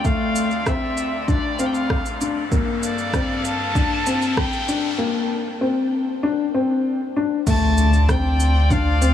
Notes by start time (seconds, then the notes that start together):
Already playing: D2 D3 C4 F4 D5, riser
0.05 A3 F5, kick, shaker
0.36 shaker
0.51 shaker
0.66 C4 E5, kick, cross-stick, shaker
0.97 shaker
1.21 E5
1.28 D4 D5, kick, shaker
1.59 C4 F5, shaker
1.66 G5
1.74 F5, shaker
1.90 kick, cross-stick
2.06 shaker
2.21 D4, shaker
2.52 G2 A#3 A4 F5, kick, shaker
2.83 D5, shaker
2.98 shaker
3.13 C4, kick, cross-stick, shaker
3.44 A5, shaker
3.75 D4, kick, shaker
4.06 C4, shaker
4.22 shaker
4.37 G5, kick, cross-stick
4.53 shaker
4.68 D4, shaker
4.98 A#3
5.61 C4
6.23 D4
6.54 C4
7.17 D4
7.47 D2 D3 A3 D4 F4 C5 D5 A5, kick, crash, impact, shaker
7.78 shaker
7.93 shaker
8.09 C4 G5, kick, cross-stick, shaker
8.40 shaker
8.71 D4 F5, kick, shaker
9.02 C4, shaker